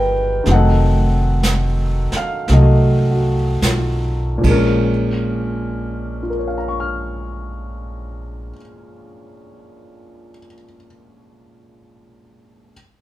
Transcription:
Already playing: G1 D#3 F3 G3 B3 D#4 F4 A#4 B4 G5 A#5
0.44 F1 D#3 F#3 A3, brush sweep, snare
0.49 C4 F#5
0.54 A4 D#5
1.43 snare, hi-hat pedal
2.12 muted upright bass stroke, snare
2.17 F5
2.48 C2 F#3 A3, brush sweep, snare
2.53 F#4 A4 D#5
3.11 F#4
3.62 B1 F4, snare, hi-hat pedal
4.38 A#2 F3
4.43 A#1 G#3 A#3, kick, ride
4.51 C#4 A#4
6.23 F4
6.30 A#4
6.39 C#5
6.47 F5
6.58 A#5
6.68 C#6
6.80 F6

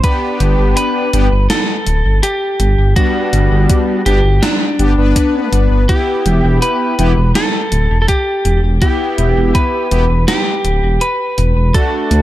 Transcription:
0.04 B3 D4 G4 B4, kick, closed hi-hat
0.40 G1, closed hi-hat
0.59 G1
0.77 B4, closed hi-hat
1.13 G1 B3 D4 G4, closed hi-hat
1.32 G1
1.50 A4, snare, closed hi-hat
1.87 D1, closed hi-hat
2.05 G1
2.23 G4, closed hi-hat
2.60 G1, closed hi-hat
2.78 G1
2.96 G3 B3 D4 F#4, kick, closed hi-hat
3.33 G1, closed hi-hat
3.51 G1
3.69 kick, closed hi-hat
4.06 G1 B3 D4 G4, closed hi-hat
4.25 G1
4.42 D4, snare, closed hi-hat
4.79 G1 B3 D4 G4, closed hi-hat
4.98 G1 B3 D4 B4
5.16 kick, closed hi-hat
5.53 G1, closed hi-hat
5.71 G1
5.89 B3 E4 G4, kick, closed hi-hat
6.26 E1, closed hi-hat
6.44 E1
6.62 B4, closed hi-hat
6.99 E1 B3 E4 G4, closed hi-hat
7.17 E1
7.35 A4, snare, closed hi-hat
7.72 D1, closed hi-hat
7.90 E1
8.02 A4
8.08 G4, kick, closed hi-hat
8.45 E1, closed hi-hat
8.63 E1
8.82 B3 E4 G4, kick, closed hi-hat
9.18 E1, closed hi-hat
9.37 E1
9.55 B4, kick, closed hi-hat
9.91 E1 B3 E4 G4, closed hi-hat
10.10 E1
10.28 G4, snare, closed hi-hat
10.65 D1, closed hi-hat
10.83 E1
11.01 B4, closed hi-hat
11.38 E1, closed hi-hat
11.56 E1
11.74 A3 D4 F#4 A4, kick, closed hi-hat
12.11 D2, closed hi-hat

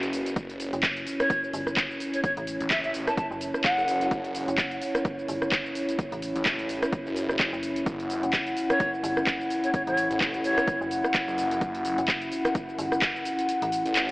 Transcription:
Already playing: C#4 F#4 B4
0.03 F#1, closed hi-hat, shaker
0.13 open hi-hat, shaker
0.26 closed hi-hat, shaker
0.36 F#1 E4 C#5, kick, closed hi-hat, shaker
0.50 closed hi-hat, shaker
0.60 open hi-hat, shaker
0.73 F#1, closed hi-hat, shaker
0.83 kick, clap, closed hi-hat, shaker
0.97 closed hi-hat, shaker
1.07 open hi-hat, shaker
1.20 C#5, cross-stick, closed hi-hat, shaker
1.30 kick, closed hi-hat, shaker
1.44 shaker
1.53 G1, open hi-hat, shaker
1.67 cross-stick, shaker
1.77 kick, clap, closed hi-hat, shaker
1.91 shaker
2.00 open hi-hat, shaker
2.14 C#5, closed hi-hat, shaker
2.24 C#5, kick, closed hi-hat, shaker
2.37 A1, closed hi-hat, shaker
2.47 open hi-hat, shaker
2.61 A1, closed hi-hat, shaker
2.71 E5, kick, clap, closed hi-hat, shaker
2.84 E5, closed hi-hat, shaker
2.94 open hi-hat, shaker
3.07 A5, cross-stick, closed hi-hat, shaker
3.17 A5, kick, closed hi-hat, shaker
3.31 F#1, shaker
3.41 open hi-hat, shaker
3.54 cross-stick, shaker
3.64 F#5, kick, clap, closed hi-hat, shaker
3.78 F#1, shaker
3.88 open hi-hat, shaker
4.01 closed hi-hat, shaker
4.11 F#1, kick, closed hi-hat, shaker
4.25 closed hi-hat, shaker
4.35 open hi-hat, shaker
4.48 F#1, closed hi-hat, shaker
4.58 kick, clap, closed hi-hat, shaker
4.71 closed hi-hat, shaker
4.82 open hi-hat, shaker
4.95 cross-stick, closed hi-hat, shaker
5.05 kick, closed hi-hat, shaker
5.19 shaker
5.28 G1, open hi-hat, shaker
5.42 cross-stick, shaker
5.52 kick, clap, closed hi-hat, shaker
5.66 shaker
5.75 open hi-hat, shaker
5.89 closed hi-hat, shaker
5.99 kick, closed hi-hat, shaker
6.12 A1, closed hi-hat, shaker
6.22 open hi-hat, shaker
6.36 A1, closed hi-hat, shaker
6.46 kick, clap, closed hi-hat, shaker
6.59 closed hi-hat, shaker
6.69 open hi-hat, shaker
6.83 cross-stick, closed hi-hat, shaker
6.93 kick, closed hi-hat, shaker
7.06 F#1, shaker
7.16 open hi-hat, shaker
7.29 cross-stick, shaker
7.39 kick, clap, closed hi-hat, shaker
7.53 F#1, shaker
7.63 open hi-hat, shaker
7.76 closed hi-hat, shaker
7.86 F#1 F#5, kick, closed hi-hat, shaker
8.00 closed hi-hat, shaker
8.10 open hi-hat, shaker
8.23 F#1, closed hi-hat, shaker
8.33 kick, clap, closed hi-hat, shaker
8.47 closed hi-hat, shaker
8.57 open hi-hat, shaker
8.70 C#5, cross-stick, closed hi-hat, shaker
8.80 kick, closed hi-hat, shaker
8.94 shaker
9.03 G1, open hi-hat, shaker
9.17 cross-stick, shaker
9.27 kick, clap, closed hi-hat, shaker
9.41 shaker
9.50 open hi-hat, shaker
9.64 C#5, closed hi-hat, shaker
9.74 C#5, kick, closed hi-hat, shaker
9.87 A1 C#5, closed hi-hat, shaker
9.97 open hi-hat, shaker
10.11 A1, closed hi-hat, shaker
10.21 kick, clap, closed hi-hat, shaker
10.34 closed hi-hat, shaker
10.44 C#5, open hi-hat, shaker
10.58 cross-stick, closed hi-hat, shaker
10.68 kick, closed hi-hat, shaker
10.81 F#1, shaker
10.91 open hi-hat, shaker
11.04 cross-stick, shaker
11.14 kick, clap, closed hi-hat, shaker
11.28 F#1, shaker
11.38 open hi-hat, shaker
11.51 closed hi-hat, shaker
11.61 F#1, kick, closed hi-hat, shaker
11.75 closed hi-hat, shaker
11.85 open hi-hat, shaker
11.98 F#1, closed hi-hat, shaker
12.08 kick, clap, closed hi-hat, shaker
12.22 closed hi-hat, shaker
12.32 open hi-hat, shaker
12.45 cross-stick, closed hi-hat, shaker
12.55 kick, closed hi-hat, shaker
12.69 shaker
12.79 G1, open hi-hat, shaker
12.92 cross-stick, shaker
13.02 kick, clap, closed hi-hat, shaker
13.16 shaker
13.25 open hi-hat, shaker
13.39 closed hi-hat, shaker
13.49 closed hi-hat, shaker
13.62 A1, closed hi-hat, shaker
13.72 open hi-hat, shaker
13.86 A1, closed hi-hat, shaker
13.96 clap, closed hi-hat, shaker

